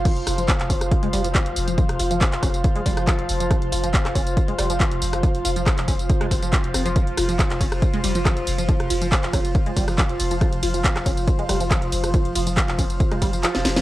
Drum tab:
CC |x---------------|----------------|----------------|----------------|
RD |----------------|----------------|----------------|----------------|
HH |xxoxxxoxxxoxxxox|xxoxxxoxxxoxxxox|xxoxxxoxxxoxxxox|xxoxxxoxxxoxxxox|
TB |x-xxx-xxx-xxx-xx|x-xxx-xxx-xxx-xx|x-xxx-xxx-xxx-xx|x-xxx-xxx-xxx-xx|
CP |----xx------x---|----xx------x---|----xx------x---|----xx------x---|
SD |--r----r----r---|-r----r----r----|r----r----r----r|----r----r----r-|
BD |o---o-o-o---o---|o---o-o-o-o-o---|o---o-o-o---o---|o---o-o-o-o-o---|

CC |----------------|----------------|----------------|----------------|
RD |--x---x---x---x-|--x---x---x---x-|--x---x---x---x-|--x---x---x---x-|
HH |xxoxxxoxxxoxxxox|xxoxxxoxxxoxxxox|xxoxxxoxxxoxxxox|xxoxxxoxxxoxxxox|
TB |x-xxx-xxx-xxx-xx|x-xxx-xxx-xxx-xx|x-xxx-xxx-xxx-xx|x-xxx-xxx-xxx-xx|
CP |----xx------x---|----xx------x---|----xx------x---|----xx------x---|
SD |--r----r----r---|-r----r----r----|r----r----r----r|----r----r---ooo|
BD |o---o-o-o---o---|o---o-o-o-o-o---|o---o-o-o---o---|o---o-o-o-o-----|